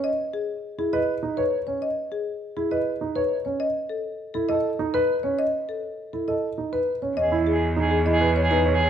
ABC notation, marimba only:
X:1
M:3/4
L:1/16
Q:1/4=101
K:Bmix
V:1 name="Marimba"
d z G z2 G d z2 B z c | d z G z2 G d z2 B z c | d z A z2 A d z2 B z c | d z A z2 A d z2 B z c |
[K:E] d z G z2 G d z c B z c |]